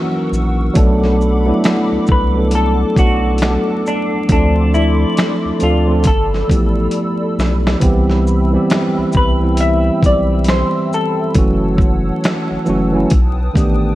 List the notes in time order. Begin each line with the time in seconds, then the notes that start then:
Already playing: E3 F#3 A#3 C#4 D#4 F#4 A#4 F#5 C#6 E6
0.32 A#1, shaker
0.74 B1 F#3 A3 B3 D4 A4 B5 D6, kick, closed hi-hat
0.78 A4
1.04 snare
1.21 shaker
1.45 F#3 A3 B3 D4
1.49 E4
1.64 finger snap, snare, closed hi-hat
1.92 C2
2.07 C2, kick, shaker
2.12 B4
2.34 F#3 A3 B3 D4
2.38 A4
2.51 A5, closed hi-hat
2.55 A4
2.95 B1 F#3 A3 B3 D4 F#4, kick, closed hi-hat, shaker
3.00 A4
3.38 closed hi-hat
3.42 finger snap, snare
3.86 D4, shaker
4.29 D2 F3 A3 C4 D4 D5 C6 D6, kick, closed hi-hat
4.33 A4
4.74 E4, shaker
5.17 finger snap, snare, closed hi-hat
5.45 D2
5.59 D2 F3 A3 C4 D4, closed hi-hat, shaker
5.63 F4 A4
5.87 F3 A3 C4 D4
5.91 A4
6.04 G1 A4 B5 E6, kick, closed hi-hat
6.34 snare
6.48 A1 F3 A3 B3 E4 G4, kick, closed hi-hat, shaker
6.91 closed hi-hat
7.38 B1, snare, shaker
7.67 snare
7.80 C2 E3 G3 B3 C4 E5 G5 E6, kick, closed hi-hat
7.84 G4
8.10 snare
8.27 shaker
8.51 E3 G3 B3 C4
8.56 G4
8.70 finger snap, snare, closed hi-hat
8.98 C2
9.12 C2, kick, shaker
9.17 B4
9.40 E3 G3 B3 C4
9.44 E4
9.57 E5, closed hi-hat
10.01 B1 E3 G3 C4, kick, closed hi-hat, shaker
10.06 G4 D5
10.44 closed hi-hat
10.48 C5, finger snap, snare
10.93 A4, shaker
11.34 F#1 E3 F#3 A3 C#4 C#5 F#5 A5, kick, closed hi-hat
11.38 F#4
11.78 kick, shaker
12.24 finger snap, snare, closed hi-hat
12.51 F#1
12.65 F#1 E3 F#3 A3 C#4, shaker
12.70 F#4
12.92 E3 F#3 A3 C#4
12.96 E4
13.10 B1 B4 G5 D#6, kick, closed hi-hat
13.53 A1 D#3 A3 B3 D4, kick, closed hi-hat, shaker
13.58 G4